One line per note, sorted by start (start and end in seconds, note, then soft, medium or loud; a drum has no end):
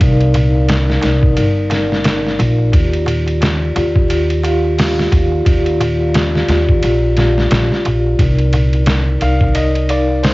0.00 1.00 C2 medium
0.00 1.01 D#4 medium
0.00 1.03 A#4 medium
0.00 0.02 D5 medium
0.00 1.00 D5 medium
0.00 2.76 F5 loud
0.00 kick loud
0.00 ride medium
0.00 darbuka tek soft
0.20 ride soft
0.20 darbuka tek soft
0.34 ride medium
0.34 darbuka tek medium
0.34 darbuka dum medium
0.55 darbuka tek soft
0.68 snare loud
0.68 ride medium
0.68 darbuka tek medium
0.88 snare soft
0.88 darbuka tek soft
1.01 1.34 C2 medium
1.01 2.69 D#4 medium
1.01 2.70 A#4 medium
1.01 2.71 D5 loud
1.01 snare medium
1.01 ride medium
1.01 darbuka tek medium
1.21 kick medium
1.21 darbuka tek soft
1.36 2.37 G1 medium
1.36 ride medium
1.36 darbuka tek medium
1.57 darbuka tek soft
1.70 snare soft
1.70 ride medium
1.70 darbuka tek medium
1.90 snare soft
1.90 darbuka tek soft
2.04 snare loud
2.04 ride medium
2.04 darbuka tek soft
2.26 snare soft
2.26 darbuka tek soft
2.39 2.70 A#1 loud
2.39 ride medium
2.39 darbuka tek medium
2.58 darbuka tek soft
2.72 3.73 D#2 loud
2.72 3.72 F4 medium
2.72 3.72 G4 medium
2.72 3.73 D5 medium
2.72 kick loud
2.72 ride medium
2.72 darbuka tek soft
2.93 ride soft
2.93 darbuka tek soft
3.06 ride medium
3.06 darbuka tek medium
3.06 darbuka dum medium
3.26 ride soft
3.26 darbuka tek soft
3.41 snare loud
3.41 ride medium
3.41 darbuka tek medium
3.62 darbuka tek soft
3.75 5.10 D#2 medium
3.75 4.40 F4 medium
3.75 4.40 G4 medium
3.75 4.41 D5 medium
3.75 ride medium
3.75 darbuka tek medium
3.95 kick loud
3.95 darbuka tek soft
4.10 ride medium
4.10 darbuka tek soft
4.30 ride soft
4.30 darbuka tek soft
4.43 5.42 F4 medium
4.43 5.43 G4 medium
4.43 5.44 F5 loud
4.43 ride medium
4.43 darbuka tek medium
4.65 darbuka tek soft
4.78 snare loud
4.78 open hi-hat medium
4.78 darbuka tek medium
4.97 snare soft
4.97 darbuka tek soft
5.12 5.43 D#2 medium
5.12 kick medium
5.12 ride medium
5.12 darbuka tek medium
5.32 darbuka tek soft
5.45 6.46 D#2 medium
5.45 6.44 F4 medium
5.45 6.45 G4 medium
5.45 6.46 D5 medium
5.45 kick medium
5.45 ride medium
5.45 darbuka tek soft
5.66 ride soft
5.66 darbuka tek soft
5.80 ride medium
5.80 darbuka tek loud
5.80 darbuka dum medium
6.00 darbuka tek soft
6.14 snare loud
6.14 ride medium
6.14 darbuka tek medium
6.35 snare soft
6.35 darbuka tek soft
6.47 6.79 D#2 medium
6.47 8.15 F4 medium
6.47 8.16 G4 medium
6.47 8.17 D5 loud
6.47 snare medium
6.47 ride medium
6.47 darbuka tek medium
6.69 kick medium
6.69 darbuka tek soft
6.83 7.50 A#1 medium
6.83 ride medium
6.83 darbuka tek medium
7.04 darbuka tek soft
7.17 snare soft
7.17 ride medium
7.17 darbuka tek medium
7.17 darbuka dum medium
7.38 snare soft
7.38 darbuka tek soft
7.51 7.68 A#1 loud
7.51 snare loud
7.51 ride medium
7.51 darbuka tek soft
7.72 snare soft
7.72 darbuka tek soft
7.85 8.16 A#1 medium
7.85 ride medium
7.85 darbuka tek medium
8.06 darbuka tek soft
8.18 9.19 C2 medium
8.18 9.18 D#4 medium
8.18 9.19 A#4 medium
8.18 9.19 D5 medium
8.18 kick loud
8.18 ride medium
8.18 darbuka tek soft
8.38 ride soft
8.38 darbuka tek soft
8.53 ride medium
8.53 darbuka tek medium
8.53 darbuka dum medium
8.73 ride soft
8.73 darbuka tek soft
8.86 snare loud
8.86 ride medium
8.86 darbuka tek medium
9.08 darbuka tek soft
9.20 10.34 C2 medium
9.20 9.86 D#4 medium
9.20 9.86 A#4 medium
9.20 9.86 D5 medium
9.20 9.57 F5 medium
9.20 ride medium
9.20 darbuka tek medium
9.41 kick medium
9.41 darbuka tek soft
9.55 9.90 D#5 loud
9.55 ride medium
9.55 darbuka tek medium
9.75 ride soft
9.75 darbuka tek soft
9.88 10.34 D#4 medium
9.88 10.34 A#4 medium
9.88 10.25 D5 medium
9.88 10.34 F5 loud
9.88 ride medium
9.88 darbuka tek medium
10.10 darbuka tek soft
10.23 10.34 C5 medium
10.23 snare loud
10.23 open hi-hat medium
10.23 darbuka tek soft